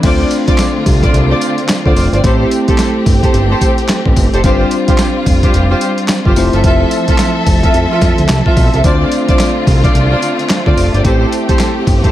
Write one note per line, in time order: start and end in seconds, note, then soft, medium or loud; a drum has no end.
0.03 0.24 D2 loud
0.03 2.22 D3 medium
0.03 2.20 A3 medium
0.03 2.22 A3 medium
0.03 2.20 C4 medium
0.03 6.33 C4 medium
0.03 2.20 D4 medium
0.03 0.22 F4 loud
0.03 2.22 F4 medium
0.03 2.20 F4 medium
0.03 0.22 C5 medium
0.03 2.21 C5 medium
0.03 0.22 D5 loud
0.03 kick loud
0.03 closed hi-hat medium
0.03 crash loud
0.03 tambourine medium
0.31 closed hi-hat medium
0.31 tambourine medium
0.47 0.52 C2 medium
0.47 0.61 F4 medium
0.47 0.61 C5 medium
0.47 0.62 D5 medium
0.47 kick loud
0.47 closed hi-hat medium
0.58 snare loud
0.58 clap medium
0.58 closed hi-hat medium
0.58 tambourine loud
0.86 1.07 C2 loud
0.86 kick loud
0.86 open hi-hat medium
0.86 tambourine medium
1.03 1.16 F4 medium
1.03 1.17 C5 medium
1.03 1.17 D5 medium
1.03 kick loud
1.03 closed hi-hat medium
1.13 1.34 C2 loud
1.13 closed hi-hat medium
1.30 1.44 F4 medium
1.30 1.44 C5 medium
1.30 1.44 D5 medium
1.41 closed hi-hat medium
1.41 tambourine medium
1.58 closed hi-hat medium
1.68 snare loud
1.68 clap loud
1.68 closed hi-hat medium
1.68 tambourine medium
1.85 1.94 D2 medium
1.85 1.99 F4 medium
1.85 1.99 C5 medium
1.85 1.99 D5 medium
1.85 kick medium
1.96 2.09 F1 medium
1.96 open hi-hat medium
1.96 tambourine medium
2.13 2.21 G1 medium
2.13 2.27 F4 medium
2.13 2.23 C5 medium
2.13 2.27 D5 medium
2.13 closed hi-hat medium
2.23 2.45 A1 loud
2.23 4.40 A3 medium
2.23 4.42 A3 medium
2.23 4.40 C4 medium
2.23 4.40 E4 medium
2.23 4.41 G4 medium
2.23 2.42 G4 loud
2.23 4.41 G4 medium
2.23 2.42 A4 medium
2.23 2.43 C5 loud
2.23 4.41 C5 medium
2.23 kick loud
2.23 closed hi-hat medium
2.23 tambourine medium
2.51 closed hi-hat medium
2.51 tambourine medium
2.68 2.72 G1 soft
2.68 2.82 G4 medium
2.68 2.82 A4 medium
2.68 2.82 C5 medium
2.68 kick loud
2.68 closed hi-hat medium
2.78 snare loud
2.78 clap medium
2.78 closed hi-hat medium
2.78 tambourine loud
3.06 3.27 G1 loud
3.06 kick loud
3.06 open hi-hat medium
3.06 tambourine medium
3.23 3.37 G4 medium
3.23 3.37 A4 medium
3.23 3.37 C5 medium
3.23 kick medium
3.23 closed hi-hat medium
3.34 3.55 G1 loud
3.34 closed hi-hat medium
3.51 3.64 G4 medium
3.51 3.64 A4 medium
3.51 3.65 C5 medium
3.61 kick medium
3.61 closed hi-hat medium
3.61 tambourine medium
3.78 closed hi-hat medium
3.88 snare loud
3.88 clap medium
3.88 closed hi-hat medium
3.88 tambourine medium
4.06 4.14 A1 medium
4.06 kick medium
4.16 4.29 G1 loud
4.16 kick loud
4.16 open hi-hat medium
4.16 tambourine medium
4.33 4.41 F1 medium
4.33 4.43 G4 medium
4.33 4.47 A4 medium
4.33 4.43 C5 medium
4.33 closed hi-hat medium
4.43 4.65 G1 loud
4.43 6.34 G3 medium
4.43 6.33 G3 medium
4.43 6.33 C4 medium
4.43 6.33 D4 medium
4.43 6.34 F4 medium
4.43 4.62 F4 loud
4.43 6.34 F4 medium
4.43 4.63 G4 loud
4.43 4.63 C5 loud
4.43 6.34 C5 medium
4.43 kick loud
4.43 closed hi-hat medium
4.43 tambourine medium
4.71 closed hi-hat medium
4.71 tambourine medium
4.88 4.92 F1 soft
4.88 5.02 F4 medium
4.88 5.02 G4 medium
4.88 5.02 C5 medium
4.88 kick loud
4.88 closed hi-hat medium
4.98 snare loud
4.98 clap medium
4.98 closed hi-hat medium
4.98 tambourine loud
5.26 5.47 F1 loud
5.26 kick loud
5.26 open hi-hat medium
5.26 tambourine medium
5.43 5.57 F4 medium
5.43 5.57 G4 medium
5.43 5.57 C5 medium
5.43 kick medium
5.43 closed hi-hat medium
5.54 5.75 F1 loud
5.54 closed hi-hat medium
5.70 5.84 F4 medium
5.70 5.84 G4 medium
5.70 5.85 C5 medium
5.81 closed hi-hat medium
5.81 tambourine medium
5.98 closed hi-hat medium
6.08 snare loud
6.08 clap medium
6.08 closed hi-hat medium
6.08 tambourine loud
6.25 6.34 G1 loud
6.25 6.39 F4 medium
6.25 6.40 G4 medium
6.25 6.40 C5 medium
6.25 kick medium
6.35 6.49 F1 loud
6.35 8.81 F3 medium
6.35 8.52 A3 medium
6.35 12.12 C4 medium
6.35 8.53 C4 medium
6.35 8.53 E4 medium
6.35 8.53 F4 medium
6.35 8.81 A4 medium
6.35 8.54 C5 medium
6.35 8.81 E5 medium
6.35 open hi-hat medium
6.35 tambourine medium
6.53 6.65 G1 medium
6.53 6.63 F4 medium
6.53 6.63 A4 medium
6.53 6.63 E5 medium
6.53 closed hi-hat medium
6.64 6.85 F1 loud
6.64 6.83 F4 loud
6.64 6.83 A4 medium
6.64 6.83 E5 loud
6.64 kick loud
6.64 closed hi-hat medium
6.64 tambourine medium
6.91 closed hi-hat medium
6.91 tambourine medium
7.08 7.13 F1 soft
7.08 7.22 F4 medium
7.08 7.22 A4 medium
7.08 7.22 E5 medium
7.08 kick loud
7.08 closed hi-hat medium
7.18 snare loud
7.18 clap medium
7.18 closed hi-hat medium
7.18 tambourine loud
7.46 7.67 F1 loud
7.46 kick loud
7.46 open hi-hat medium
7.46 tambourine medium
7.63 7.77 F4 medium
7.63 7.77 A4 medium
7.63 7.77 E5 medium
7.63 kick loud
7.63 closed hi-hat medium
7.74 7.87 F2 loud
7.74 closed hi-hat medium
7.91 8.05 F4 medium
7.91 8.05 A4 medium
7.91 8.05 E5 medium
8.01 8.14 F2 medium
8.01 kick medium
8.01 snare medium
8.01 closed hi-hat medium
8.01 tambourine medium
8.18 8.27 D2 medium
8.18 closed hi-hat medium
8.28 8.42 C2 loud
8.28 snare loud
8.28 clap loud
8.28 closed hi-hat medium
8.28 tambourine medium
8.46 8.60 F4 medium
8.46 8.60 A4 medium
8.46 8.60 E5 medium
8.46 kick medium
8.57 8.70 B1 loud
8.57 kick loud
8.57 open hi-hat medium
8.57 tambourine medium
8.74 8.82 C2 medium
8.74 8.83 F4 medium
8.74 8.87 A4 medium
8.74 8.87 E5 medium
8.74 closed hi-hat medium
8.84 9.05 D2 loud
8.84 11.02 D3 medium
8.84 12.12 A3 medium
8.84 11.01 A3 medium
8.84 11.01 C4 medium
8.84 11.01 D4 medium
8.84 9.03 F4 loud
8.84 11.02 F4 medium
8.84 11.01 F4 medium
8.84 9.03 C5 medium
8.84 11.02 C5 medium
8.84 9.03 D5 loud
8.84 kick loud
8.84 closed hi-hat medium
8.84 tambourine medium
9.12 closed hi-hat medium
9.12 tambourine medium
9.28 9.33 C2 soft
9.28 9.42 F4 medium
9.28 9.42 C5 medium
9.28 9.42 D5 medium
9.28 kick loud
9.28 closed hi-hat medium
9.39 snare loud
9.39 clap medium
9.39 closed hi-hat medium
9.39 tambourine loud
9.67 9.88 C2 medium
9.67 kick loud
9.67 open hi-hat medium
9.67 tambourine medium
9.84 9.97 F4 medium
9.84 9.97 C5 medium
9.84 9.98 D5 medium
9.84 kick loud
9.84 closed hi-hat medium
9.95 10.15 C2 loud
9.95 closed hi-hat medium
10.11 10.25 F4 medium
10.11 10.25 C5 medium
10.11 10.25 D5 medium
10.22 closed hi-hat medium
10.22 tambourine medium
10.39 closed hi-hat medium
10.49 snare loud
10.49 clap medium
10.49 closed hi-hat medium
10.49 tambourine medium
10.66 10.74 D2 medium
10.66 10.80 F4 medium
10.66 10.80 C5 medium
10.66 10.80 D5 medium
10.66 kick medium
10.77 10.90 F1 medium
10.77 open hi-hat medium
10.77 tambourine medium
10.93 11.02 G1 loud
10.93 11.07 F4 medium
10.93 11.03 C5 medium
10.93 11.07 D5 medium
10.93 closed hi-hat medium
11.04 11.25 A1 loud
11.04 12.12 A3 medium
11.04 12.12 C4 medium
11.04 12.12 E4 medium
11.04 11.23 G4 loud
11.04 12.12 G4 medium
11.04 11.23 A4 loud
11.04 11.23 C5 loud
11.04 12.12 C5 medium
11.04 kick loud
11.04 closed hi-hat medium
11.04 tambourine medium
11.32 closed hi-hat medium
11.32 tambourine medium
11.48 11.53 G1 soft
11.48 11.62 G4 medium
11.48 11.62 A4 medium
11.48 11.62 C5 medium
11.48 kick loud
11.48 closed hi-hat medium
11.59 snare loud
11.59 clap medium
11.59 closed hi-hat medium
11.59 tambourine loud
11.87 12.08 G1 loud
11.87 kick loud
11.87 open hi-hat medium
11.87 tambourine medium
12.03 12.12 G4 medium
12.03 12.12 A4 medium
12.03 12.12 C5 medium
12.03 kick loud
12.03 closed hi-hat medium